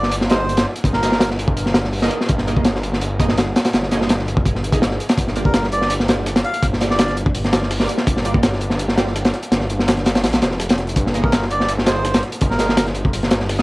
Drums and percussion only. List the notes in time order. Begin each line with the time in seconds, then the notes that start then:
0.03 snare
0.12 closed hi-hat
0.21 snare
0.30 snare, closed hi-hat
0.49 closed hi-hat
0.57 snare, closed hi-hat
0.76 closed hi-hat
0.84 kick, closed hi-hat
0.93 snare
1.03 snare, closed hi-hat
1.12 snare
1.20 snare, closed hi-hat
1.30 snare
1.39 closed hi-hat
1.48 kick
1.57 closed hi-hat
1.66 snare
1.74 snare, closed hi-hat
1.84 snare
1.93 open hi-hat
2.02 snare
2.11 closed hi-hat
2.21 snare
2.29 kick, closed hi-hat
2.38 snare
2.48 closed hi-hat
2.57 kick
2.65 snare, closed hi-hat
2.75 snare
2.83 closed hi-hat
2.93 snare
3.01 closed hi-hat
3.20 kick, closed hi-hat
3.28 snare
3.37 snare, closed hi-hat
3.56 snare, closed hi-hat
3.65 snare, closed hi-hat
3.73 snare, closed hi-hat
3.83 snare
3.91 snare, closed hi-hat
4.01 snare
4.09 snare, closed hi-hat
4.19 snare
4.28 closed hi-hat
4.37 kick
4.45 kick, closed hi-hat
4.55 snare
4.64 closed hi-hat
4.72 kick, closed hi-hat
4.82 snare, closed hi-hat
4.91 snare
5.00 closed hi-hat
5.09 snare, closed hi-hat
5.18 kick, closed hi-hat
5.28 snare
5.36 closed hi-hat
5.45 kick
5.54 snare, closed hi-hat
5.64 snare
5.72 closed hi-hat
5.82 snare
5.90 closed hi-hat
6.00 snare
6.08 snare, closed hi-hat
6.26 snare, closed hi-hat
6.36 snare, closed hi-hat
6.45 closed hi-hat
6.54 closed hi-hat
6.63 kick, closed hi-hat
6.73 snare
6.81 snare, closed hi-hat
6.90 snare
6.99 snare, closed hi-hat
7.08 snare, closed hi-hat
7.17 closed hi-hat
7.26 kick
7.35 closed hi-hat, open hi-hat
7.44 snare, closed hi-hat
7.53 snare, closed hi-hat
7.63 snare
7.71 snare, closed hi-hat, open hi-hat
7.80 snare
7.89 closed hi-hat
7.98 snare, closed hi-hat
8.07 kick, closed hi-hat
8.17 snare
8.25 closed hi-hat
8.34 kick
8.43 snare, closed hi-hat
8.53 snare
8.61 closed hi-hat
8.70 snare
8.79 closed hi-hat
8.89 snare
8.98 snare, closed hi-hat
9.07 snare
9.16 snare, closed hi-hat
9.25 snare, closed hi-hat
9.33 snare, closed hi-hat
9.43 closed hi-hat
9.52 snare, closed hi-hat
9.61 snare
9.70 closed hi-hat
9.79 snare
9.88 snare, closed hi-hat
9.97 snare, closed hi-hat
10.06 snare, closed hi-hat
10.15 snare, closed hi-hat
10.24 snare, closed hi-hat, open hi-hat
10.33 snare, closed hi-hat
10.42 snare, closed hi-hat
10.51 snare
10.60 snare, closed hi-hat
10.69 snare, closed hi-hat
10.78 snare, closed hi-hat
10.87 closed hi-hat
10.89 closed hi-hat
10.96 kick, closed hi-hat
11.06 snare
11.14 closed hi-hat
11.24 kick
11.32 snare, closed hi-hat
11.42 snare
11.51 closed hi-hat
11.60 snare
11.68 closed hi-hat
11.78 snare
11.86 snare, closed hi-hat
12.05 snare, closed hi-hat
12.14 snare, closed hi-hat
12.23 closed hi-hat
12.32 closed hi-hat
12.41 kick, closed hi-hat
12.51 snare
12.59 snare, closed hi-hat
12.69 snare
12.77 snare, closed hi-hat
12.86 snare, closed hi-hat
12.95 closed hi-hat
13.05 kick
13.13 closed hi-hat, open hi-hat
13.23 snare, closed hi-hat
13.31 snare, closed hi-hat
13.40 snare
13.49 snare, closed hi-hat, open hi-hat
13.59 snare